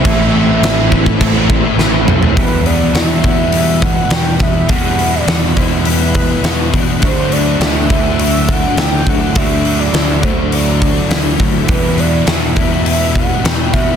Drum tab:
CC |x---x---x-------|----------------|----------------|----------------|
HH |----------------|o-o-o-o-o-o-o-o-|o-o-o-o-o-o-o-o-|o-o-o-o-o-o-o-o-|
SD |----o-------o---|----o-------o-o-|----o-------o---|----o-------o---|
T2 |--------------o-|----------------|----------------|----------------|
FT |---------------o|----------------|----------------|----------------|
BD |o-----ooo-o-----|o-----o---o---o-|o-----o---o---o-|o-----o---o---o-|

CC |----------------|----------------|
HH |o-o-o-o-o-o-o-o-|o-o-o-o-o---o-o-|
SD |----o-------o---|----o-------o-o-|
T2 |----------------|----------------|
FT |----------------|----------------|
BD |o-----o---o---o-|o-----o---o---o-|